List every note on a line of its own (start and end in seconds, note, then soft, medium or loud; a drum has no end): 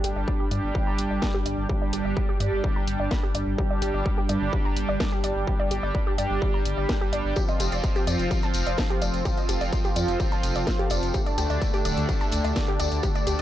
0.00 0.49 G3 medium
0.00 0.49 D4 medium
0.00 0.49 G4 medium
0.04 0.12 G1 medium
0.04 0.11 G4 medium
0.04 closed hi-hat loud
0.16 0.24 G1 medium
0.16 0.23 D5 medium
0.28 kick loud
0.40 0.50 G4 loud
0.51 0.60 G2 medium
0.51 1.67 G3 medium
0.51 1.67 D4 medium
0.51 1.67 G4 loud
0.51 0.62 D5 medium
0.51 closed hi-hat medium
0.63 0.71 G1 medium
0.75 kick loud
0.87 0.94 A#5 medium
0.98 1.07 G1 medium
0.98 closed hi-hat loud
1.11 1.19 G1 medium
1.11 1.17 D5 medium
1.22 kick loud
1.22 snare loud
1.34 1.44 G4 loud
1.46 1.54 G1 medium
1.46 1.56 D5 medium
1.46 closed hi-hat medium
1.58 1.66 G1 medium
1.69 2.37 G3 medium
1.69 2.37 D4 medium
1.69 2.37 G4 medium
1.69 1.76 G4 medium
1.69 kick loud
1.82 1.91 D5 medium
1.93 2.01 G1 medium
1.93 2.00 G4 medium
1.93 closed hi-hat loud
2.05 2.13 G1 medium
2.05 2.12 D5 medium
2.17 kick loud
2.29 2.38 G4 loud
2.40 2.49 G2 medium
2.40 3.56 G3 loud
2.40 3.56 D4 medium
2.40 3.56 G4 loud
2.40 2.50 D5 medium
2.40 closed hi-hat medium
2.52 2.60 G1 medium
2.64 kick loud
2.76 2.82 A#5 medium
2.88 2.96 G1 medium
2.88 closed hi-hat loud
3.00 3.08 G1 medium
3.00 3.06 D5 medium
3.11 kick loud
3.11 snare loud
3.23 3.33 G4 loud
3.35 3.43 G1 medium
3.35 3.45 D5 medium
3.35 closed hi-hat medium
3.47 3.55 G1 medium
3.58 4.27 G3 medium
3.58 4.27 D4 medium
3.58 3.65 G4 medium
3.58 4.27 G4 loud
3.58 kick loud
3.70 3.80 D5 medium
3.82 3.90 G1 medium
3.82 3.89 G4 medium
3.82 closed hi-hat loud
3.94 4.02 G1 medium
3.94 4.01 D5 medium
4.06 kick loud
4.18 4.27 G4 loud
4.29 4.38 G2 medium
4.29 5.45 G3 medium
4.29 5.45 D4 medium
4.29 5.45 G4 loud
4.29 4.39 D5 medium
4.29 closed hi-hat medium
4.41 4.49 G1 medium
4.53 kick loud
4.65 4.71 A#5 medium
4.77 4.85 G1 medium
4.77 closed hi-hat loud
4.89 4.97 G1 medium
4.89 4.95 D5 medium
5.00 kick loud
5.00 snare loud
5.12 5.22 G4 loud
5.24 5.32 G1 medium
5.24 5.34 D5 medium
5.24 closed hi-hat medium
5.36 5.44 G1 medium
5.47 6.15 G3 medium
5.47 6.15 D4 medium
5.47 6.15 G4 medium
5.47 5.54 G4 medium
5.47 kick loud
5.59 5.69 D5 medium
5.71 5.79 G1 medium
5.71 5.78 G4 medium
5.71 closed hi-hat loud
5.83 5.91 G1 medium
5.83 5.90 D5 medium
5.95 kick loud
6.07 6.16 G4 loud
6.18 6.27 G2 loud
6.18 6.63 G3 loud
6.18 6.63 D4 medium
6.18 6.63 G4 loud
6.18 6.28 D5 medium
6.18 closed hi-hat medium
6.30 6.38 G1 medium
6.42 kick loud
6.54 6.60 A#5 medium
6.65 6.74 G1 medium
6.65 6.98 G3 medium
6.65 6.98 D4 medium
6.65 6.98 G4 medium
6.65 closed hi-hat loud
6.78 6.86 G1 medium
6.78 6.84 D5 medium
6.89 kick loud
6.89 snare loud
7.01 7.34 G3 medium
7.01 7.34 D4 medium
7.01 7.34 G4 loud
7.01 7.11 G4 loud
7.13 7.21 G1 loud
7.13 7.23 D5 medium
7.13 closed hi-hat medium
7.25 7.33 G1 medium
7.36 8.04 F3 medium
7.36 8.04 C4 medium
7.36 11.10 F4 medium
7.36 8.04 F4 medium
7.36 7.43 G4 medium
7.36 13.42 A4 medium
7.36 11.10 C5 medium
7.36 13.42 A5 medium
7.36 kick loud
7.36 closed hi-hat soft
7.36 tambourine soft
7.48 7.58 D#5 medium
7.48 closed hi-hat soft
7.48 tambourine soft
7.60 7.68 F1 medium
7.60 7.67 G4 medium
7.60 closed hi-hat loud
7.60 tambourine loud
7.72 7.80 F1 medium
7.72 7.79 D5 medium
7.72 closed hi-hat soft
7.72 tambourine soft
7.84 kick loud
7.84 closed hi-hat soft
7.84 tambourine medium
7.95 8.05 G4 loud
7.95 closed hi-hat soft
7.95 tambourine soft
8.07 8.16 F2 medium
8.07 9.23 F3 loud
8.07 9.23 C4 medium
8.07 9.23 F4 loud
8.07 8.17 D5 medium
8.07 closed hi-hat medium
8.07 tambourine medium
8.19 8.27 F1 medium
8.19 closed hi-hat soft
8.19 tambourine soft
8.31 kick loud
8.31 closed hi-hat soft
8.31 tambourine medium
8.43 8.49 A5 medium
8.43 closed hi-hat soft
8.43 tambourine soft
8.54 8.63 F1 medium
8.54 closed hi-hat loud
8.54 tambourine loud
8.66 8.75 F1 medium
8.66 8.73 D5 medium
8.66 closed hi-hat soft
8.66 tambourine soft
8.78 kick loud
8.78 snare loud
8.78 closed hi-hat soft
8.78 tambourine medium
8.90 9.00 G4 loud
8.90 closed hi-hat soft
9.02 9.10 F1 medium
9.02 9.12 D5 medium
9.02 closed hi-hat medium
9.02 tambourine medium
9.13 9.22 F1 medium
9.13 closed hi-hat soft
9.13 tambourine soft
9.25 9.93 F3 medium
9.25 9.93 C4 medium
9.25 9.93 F4 medium
9.25 9.32 G4 medium
9.25 kick loud
9.25 closed hi-hat soft
9.25 tambourine medium
9.37 9.47 D#5 medium
9.37 closed hi-hat soft
9.37 tambourine soft
9.49 9.57 F1 loud
9.49 9.56 G4 medium
9.49 closed hi-hat loud
9.49 tambourine loud
9.61 9.69 F1 medium
9.61 9.67 D5 medium
9.61 closed hi-hat soft
9.61 tambourine soft
9.72 kick loud
9.72 closed hi-hat soft
9.72 tambourine medium
9.84 9.94 G4 loud
9.84 closed hi-hat soft
9.84 tambourine soft
9.96 10.05 F2 medium
9.96 11.12 F3 loud
9.96 11.12 C4 medium
9.96 11.12 F4 loud
9.96 10.06 D5 medium
9.96 closed hi-hat medium
9.96 tambourine medium
10.08 10.16 F1 medium
10.08 closed hi-hat soft
10.08 tambourine soft
10.20 kick loud
10.20 closed hi-hat soft
10.20 tambourine medium
10.32 10.38 A5 medium
10.32 closed hi-hat soft
10.32 tambourine soft
10.43 10.52 F1 medium
10.43 closed hi-hat loud
10.43 tambourine medium
10.55 10.63 F1 medium
10.55 10.62 D5 medium
10.55 closed hi-hat soft
10.55 tambourine soft
10.67 kick loud
10.67 snare loud
10.67 closed hi-hat soft
10.67 tambourine soft
10.79 10.89 G4 loud
10.79 closed hi-hat soft
10.90 10.99 F1 loud
10.90 11.01 D5 medium
10.90 closed hi-hat medium
10.90 tambourine medium
11.03 11.11 F1 medium
11.03 closed hi-hat soft
11.03 tambourine soft
11.14 11.82 D3 medium
11.14 11.82 A3 medium
11.14 11.82 D4 loud
11.14 13.42 G4 medium
11.14 11.21 G4 medium
11.14 13.42 D5 medium
11.14 kick loud
11.14 closed hi-hat soft
11.14 tambourine medium
11.26 11.36 D5 medium
11.26 closed hi-hat soft
11.26 tambourine soft
11.38 11.46 D2 medium
11.38 11.45 G4 medium
11.38 closed hi-hat loud
11.38 tambourine medium
11.50 11.58 D2 medium
11.50 11.56 D5 medium
11.50 closed hi-hat soft
11.50 tambourine soft
11.62 kick loud
11.62 closed hi-hat soft
11.62 tambourine soft
11.73 11.83 G4 loud
11.73 closed hi-hat soft
11.73 tambourine soft
11.85 11.94 D1 medium
11.85 13.01 D3 loud
11.85 13.01 A3 medium
11.85 13.01 D4 loud
11.85 11.95 D5 medium
11.85 closed hi-hat medium
11.85 tambourine medium
11.97 12.05 D2 medium
11.97 closed hi-hat soft
11.97 tambourine soft
12.09 kick loud
12.09 closed hi-hat soft
12.09 tambourine medium
12.21 12.27 A5 medium
12.21 closed hi-hat soft
12.21 tambourine soft
12.32 12.41 D2 medium
12.32 closed hi-hat loud
12.32 tambourine medium
12.45 12.52 D2 medium
12.45 12.51 D5 medium
12.45 closed hi-hat soft
12.45 tambourine soft
12.56 kick loud
12.56 snare loud
12.56 closed hi-hat soft
12.56 tambourine soft
12.68 12.78 G4 loud
12.68 closed hi-hat soft
12.80 12.88 D2 medium
12.80 12.90 D5 medium
12.80 closed hi-hat medium
12.80 tambourine loud
12.92 13.00 D2 medium
12.92 closed hi-hat soft
12.92 tambourine soft
13.03 13.42 D3 medium
13.03 13.42 A3 medium
13.03 13.42 D4 loud
13.03 13.10 G4 medium
13.03 kick loud
13.03 closed hi-hat soft
13.03 tambourine medium
13.15 13.25 D5 medium
13.15 closed hi-hat soft
13.15 tambourine soft
13.27 13.35 D2 medium
13.27 13.34 G4 medium
13.27 closed hi-hat loud
13.27 tambourine loud